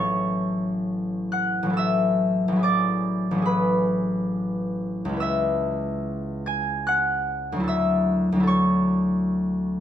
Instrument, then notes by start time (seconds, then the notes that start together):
harp
Already playing: A1 F#3 E4 A4 C#5 C#6
1.32 F#5 F#6
1.63 A1 F#3
1.70 E4 A4
1.77 E5 E6
2.48 A1
2.52 F#3 E4
2.59 G#4 D6
2.64 D5
3.31 A1 F#3
3.38 E4 G#4
3.46 B4 B5
5.05 C#2
5.09 G#3 E4
5.17 B4 E6
5.22 E5
6.46 G#5 G#6
6.87 F#5 F#6
7.52 D2 F#3
7.60 E4 A4
7.68 E5 E6
8.32 D2 F#3
8.40 E4 A4
8.47 C#5 C#6